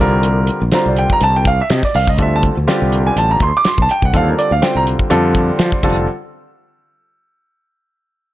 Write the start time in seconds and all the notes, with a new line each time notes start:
0.00 C2 D3 G3 C4 F4 A#4
0.23 closed hi-hat
0.47 closed hi-hat
0.62 A#1
0.72 D3 G3 C4 F4 C5 A#5, snare, closed hi-hat
0.86 C2 D5
0.96 G5, closed hi-hat
1.10 A#5, kick
1.21 C2 A5, closed hi-hat
1.36 G5
1.45 F5, kick, closed hi-hat
1.61 E5
1.70 C3 D#5, snare, closed hi-hat
1.83 D5, muted fretless electric bass stroke, kick, snare
1.94 C2 F5, open hi-hat
2.08 D#5, kick
2.18 D2 D3 G3 C4 F4 A4 E5, kick, closed hi-hat
2.36 A5
2.43 kick, closed hi-hat
2.57 D2
2.67 D3 G3 C4 F4 G4, snare, closed hi-hat
2.82 C2
2.92 closed hi-hat
3.07 G#5
3.16 A1 A5, closed hi-hat
3.31 A#5
3.40 D2 C6, kick, closed hi-hat
3.57 D6
3.65 C6, muted fretless electric bass stroke, snare, closed hi-hat
3.78 C2, kick
3.82 A5
3.89 G5, closed hi-hat
4.02 C2 F#5, kick
4.13 D#2 D3 G3 C4 F4 A4 F5, kick, closed hi-hat
4.29 A#4
4.39 D5, closed hi-hat
4.51 D2 F5
4.62 D3 G3 C4 F4 C5 G5, snare, closed hi-hat
4.75 C2 A#5
4.87 closed hi-hat
4.99 kick
5.10 F2 D3 G3 C4 F4 A4, closed hi-hat
5.35 kick, closed hi-hat
5.59 F3 C5, snare, closed hi-hat
5.72 muted fretless electric bass stroke, kick
5.83 F1 D3 G3 C4 F4 A4, kick, crash